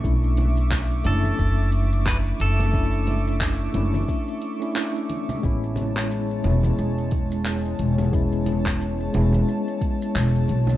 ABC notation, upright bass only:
X:1
M:4/4
L:1/8
Q:"Swing 16ths" 1/4=89
K:A
V:1 name="Upright bass" clef=bass
B,,,3 F,,, F,,,3 F,,,- | F,,,3 F,,, z4 | A,,,3 E,,, E,,,3 E,,,- | E,,,3 E,,, z2 E,,, B,,, |]